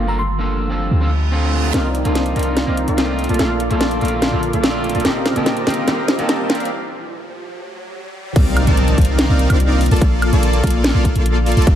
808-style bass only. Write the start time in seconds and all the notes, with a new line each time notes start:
Already playing: G1
0.91 D2
1.74 C2
2.05 C2
2.36 C2
2.67 C2
2.88 C2
3.29 A#1
3.40 A#1
3.71 A#1
4.02 A#1
4.33 A#1
4.53 A#1
4.95 A#1
5.05 F1
5.36 F1
5.67 F1
5.88 F1
6.19 F1
6.50 G1
8.36 C2
8.67 C2
8.98 C2
9.29 C2
9.50 C2
9.91 A#1
10.33 A#1
10.64 A#1
10.95 A#1
11.15 A#1
11.57 A#1